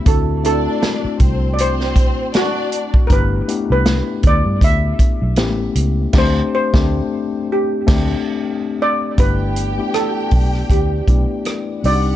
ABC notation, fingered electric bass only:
X:1
M:4/4
L:1/16
Q:"Swing 16ths" 1/4=79
K:G
V:1 name="Fingered electric bass" clef=bass
D,,4 z2 C,,4- C,, z4 z | G,,,2 z C,,2 z D,, G,, D,,2 z B,,, A,,,2 ^C,,2 | D,,2 z D,,2 z4 D,,2 z4 z | G,,,4 z2 B,,,2 D,,2 B,,, z3 C,,2 |]